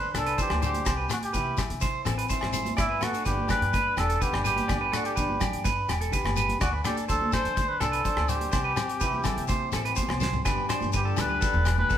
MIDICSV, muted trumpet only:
0, 0, Header, 1, 2, 480
1, 0, Start_track
1, 0, Key_signature, 1, "major"
1, 0, Tempo, 480000
1, 859, Time_signature, 4, 2, 24, 8
1, 11979, End_track
2, 0, Start_track
2, 0, Title_t, "Muted trumpet"
2, 0, Program_c, 0, 59
2, 0, Note_on_c, 0, 71, 110
2, 96, Note_off_c, 0, 71, 0
2, 96, Note_on_c, 0, 71, 65
2, 180, Note_on_c, 0, 69, 88
2, 195, Note_off_c, 0, 71, 0
2, 400, Note_off_c, 0, 69, 0
2, 417, Note_on_c, 0, 67, 86
2, 623, Note_off_c, 0, 67, 0
2, 650, Note_on_c, 0, 67, 89
2, 1082, Note_off_c, 0, 67, 0
2, 1122, Note_on_c, 0, 66, 78
2, 1171, Note_off_c, 0, 66, 0
2, 1229, Note_on_c, 0, 67, 86
2, 1670, Note_off_c, 0, 67, 0
2, 2788, Note_on_c, 0, 64, 88
2, 3030, Note_on_c, 0, 66, 83
2, 3045, Note_off_c, 0, 64, 0
2, 3252, Note_off_c, 0, 66, 0
2, 3258, Note_on_c, 0, 67, 91
2, 3480, Note_off_c, 0, 67, 0
2, 3498, Note_on_c, 0, 71, 97
2, 3943, Note_off_c, 0, 71, 0
2, 3976, Note_on_c, 0, 69, 86
2, 4223, Note_on_c, 0, 67, 88
2, 4238, Note_off_c, 0, 69, 0
2, 4443, Note_off_c, 0, 67, 0
2, 4449, Note_on_c, 0, 67, 99
2, 4937, Note_on_c, 0, 66, 75
2, 4952, Note_off_c, 0, 67, 0
2, 5049, Note_off_c, 0, 66, 0
2, 5055, Note_on_c, 0, 67, 77
2, 5500, Note_off_c, 0, 67, 0
2, 6616, Note_on_c, 0, 66, 86
2, 6723, Note_off_c, 0, 66, 0
2, 6856, Note_on_c, 0, 67, 79
2, 6962, Note_off_c, 0, 67, 0
2, 7092, Note_on_c, 0, 69, 92
2, 7315, Note_off_c, 0, 69, 0
2, 7336, Note_on_c, 0, 72, 108
2, 7686, Note_on_c, 0, 71, 93
2, 7701, Note_off_c, 0, 72, 0
2, 7806, Note_on_c, 0, 69, 87
2, 7821, Note_off_c, 0, 71, 0
2, 8289, Note_on_c, 0, 67, 96
2, 8304, Note_off_c, 0, 69, 0
2, 10212, Note_off_c, 0, 67, 0
2, 10962, Note_on_c, 0, 67, 93
2, 11195, Note_on_c, 0, 71, 111
2, 11210, Note_off_c, 0, 67, 0
2, 11780, Note_off_c, 0, 71, 0
2, 11786, Note_on_c, 0, 71, 103
2, 11979, Note_off_c, 0, 71, 0
2, 11979, End_track
0, 0, End_of_file